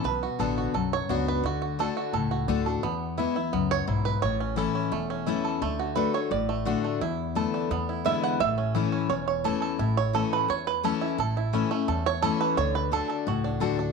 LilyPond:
<<
  \new Staff \with { instrumentName = "Five-string banjo" } { \time 4/4 \key a \major \tempo 4 = 172 << { b'4. r4 cis''4 b'8 | fis'4 a'4. r4. | r2 r8 cis''4 b'8 | cis''4 a'4. r4. |
r4 b'8 cis''8 d''4. r8 | r2. e''8 fis''8 | e''4. r8 cis''8 cis''8 a'4 | r8 cis''8 a'8 b'8 cis''8 b'8 a'4 |
a'4 r4. cis''8 a'8 b'8 | cis''8 b'8 a'4 fis'4 r4 | } \\ { r8 fis'8 a'8 fis'8 a'4 fis'4 | r8 fis'4 fis'8 a'8 fis'8 d'8 a'8 | b4 e'8 e'8 b4 e'4 | r8 cis'4 cis'8 a8 cis'8 e'8 a'8 |
a8 fis'4. r8 a8 fis'8 a8 | e'4 a'8 d'8 b8 e'4. | r8 cis'8 e'8 cis'4. r8 a'8 | e'4. r2 e'8~ |
e'8 e'8 cis'8 a8 a'4. r8 | r4. a'4 d'8 a'8 d'8 | } >> }
  \new Staff \with { instrumentName = "Steel-string acoustic guitar" } { \time 4/4 \key a \major << { r4 <d b d' fis'>4 r4 <b d' fis'>4 | r4 <d a d' fis'>4 r4 <d a d' fis'>8 <d' fis'>8 | r4 <e gis b e'>8 <b e'>8 r2 | r4 <e a cis' e'>4 r4 <e a cis' e'>4 |
r4 <d a d' fis'>4 r4 <d a d' fis'>4 | r4 <d a b e'>4 r4 <d gis b e'>4 | r4 <e a cis' e'>4 r4 <e a cis' e'>4 | r4 <e a cis' e'>4 r4 <e a cis' e'>4 |
r4 <e a cis' e'>8 <cis' e'>8 r4 <e a cis' e'>4 | r4 <d a d' fis'>4 r4 <d a d' fis'>8 fis'8 | } \\ { b,2 fis,2 | d2 a,2 | e,2 fis,4 gis,4 | a,2 e,2 |
d2 a,2 | e,2 e,2 | a,2 e,2 | a,2 e,2 |
a,2 e,2 | d2 a,2 | } >> }
  \new Staff \with { instrumentName = "Upright bass" } { \clef bass \time 4/4 \key a \major b,,4 a,,4 b,,4 cis,4 | d,2 cis,4 d,4 | e,2 cis,4 b,,4 | a,,2 e,,2 |
d,2 a,,2 | e,2 e,2 | a,,2 e,,2 | a,,2 e,2 |
a,,2 e,2 | d,2 cis,4 d,4 | }
>>